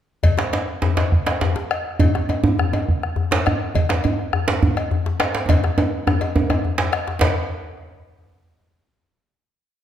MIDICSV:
0, 0, Header, 1, 4, 480
1, 0, Start_track
1, 0, Tempo, 292113
1, 393, Time_signature, 12, 3, 24, 8
1, 8550, Tempo, 284225
1, 16364, End_track
2, 0, Start_track
2, 0, Title_t, "Bombo"
2, 396, Note_on_c, 9, 43, 83
2, 560, Note_off_c, 9, 43, 0
2, 632, Note_on_c, 9, 37, 65
2, 796, Note_off_c, 9, 37, 0
2, 878, Note_on_c, 9, 37, 28
2, 1042, Note_off_c, 9, 37, 0
2, 1115, Note_on_c, 9, 37, 27
2, 1280, Note_off_c, 9, 37, 0
2, 1841, Note_on_c, 9, 37, 26
2, 1841, Note_on_c, 9, 43, 85
2, 2005, Note_off_c, 9, 37, 0
2, 2005, Note_off_c, 9, 43, 0
2, 2083, Note_on_c, 9, 37, 66
2, 2248, Note_off_c, 9, 37, 0
2, 2808, Note_on_c, 9, 37, 91
2, 2972, Note_off_c, 9, 37, 0
2, 3048, Note_on_c, 9, 37, 25
2, 3212, Note_off_c, 9, 37, 0
2, 3292, Note_on_c, 9, 43, 88
2, 3457, Note_off_c, 9, 43, 0
2, 3533, Note_on_c, 9, 37, 65
2, 3697, Note_off_c, 9, 37, 0
2, 3792, Note_on_c, 9, 37, 27
2, 3956, Note_off_c, 9, 37, 0
2, 4025, Note_on_c, 9, 37, 28
2, 4189, Note_off_c, 9, 37, 0
2, 4263, Note_on_c, 9, 37, 86
2, 4427, Note_off_c, 9, 37, 0
2, 4739, Note_on_c, 9, 37, 26
2, 4739, Note_on_c, 9, 43, 85
2, 4904, Note_off_c, 9, 37, 0
2, 4904, Note_off_c, 9, 43, 0
2, 4985, Note_on_c, 9, 37, 69
2, 5150, Note_off_c, 9, 37, 0
2, 5696, Note_on_c, 9, 37, 90
2, 5860, Note_off_c, 9, 37, 0
2, 5933, Note_on_c, 9, 37, 28
2, 6097, Note_off_c, 9, 37, 0
2, 6168, Note_on_c, 9, 43, 96
2, 6333, Note_off_c, 9, 43, 0
2, 6397, Note_on_c, 9, 37, 67
2, 6561, Note_off_c, 9, 37, 0
2, 6645, Note_on_c, 9, 37, 29
2, 6809, Note_off_c, 9, 37, 0
2, 6887, Note_on_c, 9, 37, 30
2, 7051, Note_off_c, 9, 37, 0
2, 7117, Note_on_c, 9, 37, 85
2, 7281, Note_off_c, 9, 37, 0
2, 7599, Note_on_c, 9, 37, 26
2, 7599, Note_on_c, 9, 43, 81
2, 7764, Note_off_c, 9, 37, 0
2, 7764, Note_off_c, 9, 43, 0
2, 7841, Note_on_c, 9, 37, 66
2, 8005, Note_off_c, 9, 37, 0
2, 8547, Note_on_c, 9, 37, 92
2, 8716, Note_off_c, 9, 37, 0
2, 8804, Note_on_c, 9, 37, 27
2, 8972, Note_off_c, 9, 37, 0
2, 9049, Note_on_c, 9, 43, 89
2, 9218, Note_off_c, 9, 43, 0
2, 9292, Note_on_c, 9, 37, 62
2, 9461, Note_off_c, 9, 37, 0
2, 9529, Note_on_c, 9, 37, 28
2, 9698, Note_off_c, 9, 37, 0
2, 10023, Note_on_c, 9, 37, 91
2, 10191, Note_off_c, 9, 37, 0
2, 10265, Note_on_c, 9, 37, 28
2, 10434, Note_off_c, 9, 37, 0
2, 10500, Note_on_c, 9, 37, 25
2, 10500, Note_on_c, 9, 43, 81
2, 10669, Note_off_c, 9, 37, 0
2, 10669, Note_off_c, 9, 43, 0
2, 10742, Note_on_c, 9, 37, 69
2, 10911, Note_off_c, 9, 37, 0
2, 10989, Note_on_c, 9, 37, 25
2, 11157, Note_off_c, 9, 37, 0
2, 11466, Note_on_c, 9, 37, 92
2, 11635, Note_off_c, 9, 37, 0
2, 11702, Note_on_c, 9, 37, 27
2, 11871, Note_off_c, 9, 37, 0
2, 11934, Note_on_c, 9, 43, 74
2, 12102, Note_off_c, 9, 43, 0
2, 16364, End_track
3, 0, Start_track
3, 0, Title_t, "Djembe"
3, 377, Note_on_c, 9, 64, 73
3, 542, Note_off_c, 9, 64, 0
3, 616, Note_on_c, 9, 62, 61
3, 616, Note_on_c, 9, 63, 63
3, 633, Note_off_c, 9, 62, 0
3, 633, Note_on_c, 9, 62, 69
3, 780, Note_off_c, 9, 63, 0
3, 798, Note_off_c, 9, 62, 0
3, 875, Note_on_c, 9, 62, 72
3, 1040, Note_off_c, 9, 62, 0
3, 1346, Note_on_c, 9, 62, 68
3, 1350, Note_on_c, 9, 64, 80
3, 1510, Note_off_c, 9, 62, 0
3, 1514, Note_off_c, 9, 64, 0
3, 1594, Note_on_c, 9, 62, 75
3, 1596, Note_off_c, 9, 62, 0
3, 1596, Note_on_c, 9, 62, 56
3, 1596, Note_on_c, 9, 63, 58
3, 1760, Note_off_c, 9, 62, 0
3, 1760, Note_off_c, 9, 63, 0
3, 2079, Note_on_c, 9, 62, 72
3, 2243, Note_off_c, 9, 62, 0
3, 2321, Note_on_c, 9, 62, 70
3, 2323, Note_on_c, 9, 64, 75
3, 2485, Note_off_c, 9, 62, 0
3, 2488, Note_off_c, 9, 64, 0
3, 2560, Note_on_c, 9, 62, 62
3, 2560, Note_on_c, 9, 63, 60
3, 2724, Note_off_c, 9, 62, 0
3, 2724, Note_off_c, 9, 63, 0
3, 3278, Note_on_c, 9, 64, 91
3, 3298, Note_off_c, 9, 64, 0
3, 3298, Note_on_c, 9, 64, 74
3, 3462, Note_off_c, 9, 64, 0
3, 3535, Note_on_c, 9, 62, 59
3, 3535, Note_on_c, 9, 63, 60
3, 3699, Note_off_c, 9, 62, 0
3, 3699, Note_off_c, 9, 63, 0
3, 3764, Note_on_c, 9, 63, 68
3, 3928, Note_off_c, 9, 63, 0
3, 4003, Note_on_c, 9, 64, 102
3, 4167, Note_off_c, 9, 64, 0
3, 4253, Note_on_c, 9, 64, 73
3, 4417, Note_off_c, 9, 64, 0
3, 4487, Note_on_c, 9, 63, 55
3, 4490, Note_off_c, 9, 63, 0
3, 4490, Note_on_c, 9, 63, 69
3, 4655, Note_off_c, 9, 63, 0
3, 5196, Note_on_c, 9, 62, 21
3, 5196, Note_on_c, 9, 64, 69
3, 5361, Note_off_c, 9, 62, 0
3, 5361, Note_off_c, 9, 64, 0
3, 5442, Note_on_c, 9, 62, 52
3, 5442, Note_on_c, 9, 63, 53
3, 5455, Note_off_c, 9, 62, 0
3, 5455, Note_on_c, 9, 62, 97
3, 5607, Note_off_c, 9, 63, 0
3, 5619, Note_off_c, 9, 62, 0
3, 5704, Note_on_c, 9, 64, 65
3, 5868, Note_off_c, 9, 64, 0
3, 6157, Note_on_c, 9, 64, 64
3, 6321, Note_off_c, 9, 64, 0
3, 6397, Note_on_c, 9, 62, 54
3, 6397, Note_on_c, 9, 63, 53
3, 6407, Note_off_c, 9, 62, 0
3, 6407, Note_on_c, 9, 62, 93
3, 6561, Note_off_c, 9, 63, 0
3, 6571, Note_off_c, 9, 62, 0
3, 6654, Note_on_c, 9, 64, 71
3, 6818, Note_off_c, 9, 64, 0
3, 7116, Note_on_c, 9, 64, 66
3, 7281, Note_off_c, 9, 64, 0
3, 7357, Note_on_c, 9, 62, 94
3, 7367, Note_off_c, 9, 62, 0
3, 7367, Note_on_c, 9, 62, 52
3, 7367, Note_on_c, 9, 63, 53
3, 7531, Note_off_c, 9, 62, 0
3, 7531, Note_off_c, 9, 63, 0
3, 7602, Note_on_c, 9, 64, 73
3, 7767, Note_off_c, 9, 64, 0
3, 8074, Note_on_c, 9, 62, 21
3, 8074, Note_on_c, 9, 64, 64
3, 8238, Note_off_c, 9, 62, 0
3, 8238, Note_off_c, 9, 64, 0
3, 8318, Note_on_c, 9, 62, 57
3, 8318, Note_on_c, 9, 63, 54
3, 8482, Note_off_c, 9, 62, 0
3, 8482, Note_off_c, 9, 63, 0
3, 8539, Note_on_c, 9, 62, 85
3, 8708, Note_off_c, 9, 62, 0
3, 8791, Note_on_c, 9, 62, 71
3, 8960, Note_off_c, 9, 62, 0
3, 9031, Note_on_c, 9, 63, 98
3, 9034, Note_on_c, 9, 62, 21
3, 9034, Note_on_c, 9, 64, 62
3, 9200, Note_off_c, 9, 63, 0
3, 9203, Note_off_c, 9, 62, 0
3, 9203, Note_off_c, 9, 64, 0
3, 9282, Note_on_c, 9, 62, 56
3, 9282, Note_on_c, 9, 63, 59
3, 9451, Note_off_c, 9, 62, 0
3, 9451, Note_off_c, 9, 63, 0
3, 9519, Note_on_c, 9, 63, 94
3, 9688, Note_off_c, 9, 63, 0
3, 10011, Note_on_c, 9, 64, 72
3, 10017, Note_on_c, 9, 63, 88
3, 10180, Note_off_c, 9, 64, 0
3, 10186, Note_off_c, 9, 63, 0
3, 10258, Note_on_c, 9, 62, 52
3, 10258, Note_on_c, 9, 63, 55
3, 10427, Note_off_c, 9, 62, 0
3, 10427, Note_off_c, 9, 63, 0
3, 10498, Note_on_c, 9, 63, 97
3, 10666, Note_off_c, 9, 63, 0
3, 10737, Note_on_c, 9, 63, 91
3, 10738, Note_on_c, 9, 64, 38
3, 10905, Note_off_c, 9, 63, 0
3, 10907, Note_off_c, 9, 64, 0
3, 10988, Note_on_c, 9, 64, 42
3, 11157, Note_off_c, 9, 64, 0
3, 11214, Note_on_c, 9, 62, 88
3, 11228, Note_on_c, 9, 64, 50
3, 11383, Note_off_c, 9, 62, 0
3, 11397, Note_off_c, 9, 64, 0
3, 11474, Note_on_c, 9, 62, 57
3, 11643, Note_off_c, 9, 62, 0
3, 11710, Note_on_c, 9, 62, 58
3, 11879, Note_off_c, 9, 62, 0
3, 11937, Note_on_c, 9, 64, 66
3, 11941, Note_on_c, 9, 62, 103
3, 12106, Note_off_c, 9, 64, 0
3, 12110, Note_off_c, 9, 62, 0
3, 16364, End_track
4, 0, Start_track
4, 0, Title_t, "Drums"
4, 386, Note_on_c, 9, 56, 55
4, 550, Note_off_c, 9, 56, 0
4, 868, Note_on_c, 9, 56, 38
4, 1032, Note_off_c, 9, 56, 0
4, 1597, Note_on_c, 9, 56, 41
4, 1761, Note_off_c, 9, 56, 0
4, 2087, Note_on_c, 9, 56, 42
4, 2252, Note_off_c, 9, 56, 0
4, 2806, Note_on_c, 9, 56, 46
4, 2971, Note_off_c, 9, 56, 0
4, 3287, Note_on_c, 9, 56, 61
4, 3451, Note_off_c, 9, 56, 0
4, 3773, Note_on_c, 9, 56, 44
4, 3938, Note_off_c, 9, 56, 0
4, 4494, Note_on_c, 9, 56, 45
4, 4658, Note_off_c, 9, 56, 0
4, 5686, Note_on_c, 9, 56, 47
4, 5850, Note_off_c, 9, 56, 0
4, 6169, Note_on_c, 9, 56, 61
4, 6333, Note_off_c, 9, 56, 0
4, 6636, Note_on_c, 9, 56, 46
4, 6801, Note_off_c, 9, 56, 0
4, 7837, Note_on_c, 9, 56, 43
4, 8001, Note_off_c, 9, 56, 0
4, 8552, Note_on_c, 9, 56, 47
4, 8721, Note_off_c, 9, 56, 0
4, 9045, Note_on_c, 9, 56, 65
4, 9214, Note_off_c, 9, 56, 0
4, 9531, Note_on_c, 9, 56, 45
4, 9700, Note_off_c, 9, 56, 0
4, 10250, Note_on_c, 9, 56, 45
4, 10419, Note_off_c, 9, 56, 0
4, 10740, Note_on_c, 9, 56, 43
4, 10909, Note_off_c, 9, 56, 0
4, 11459, Note_on_c, 9, 56, 45
4, 11628, Note_off_c, 9, 56, 0
4, 11943, Note_on_c, 9, 56, 72
4, 12112, Note_off_c, 9, 56, 0
4, 16364, End_track
0, 0, End_of_file